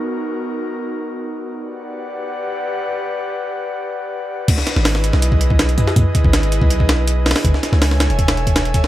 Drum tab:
CC |--------------------------------|--------------------------------|--------------------------------|x-------------------------------|
HH |--------------------------------|--------------------------------|--------------------------------|x---x---o---x---x---x---x-x-x---|
SD |--------------------------------|--------------------------------|--------------------------------|--o-o-o-o-o---o---------o-----o-|
BD |--------------------------------|--------------------------------|--------------------------------|o-----------------o---o-----o---|

CC |--------------------------------|--------------------------------|
HH |x---x---x-x-x---x---x---x---ooo-|x---x---o---x-x-x-x-x-x-x-x-x---|
SD |--------o-----------o-------ooo-|--o-o-o-o-o-o-----o-----o-----o-|
BD |o---o-o-------o---o-------------|o---------------o-----o-----o---|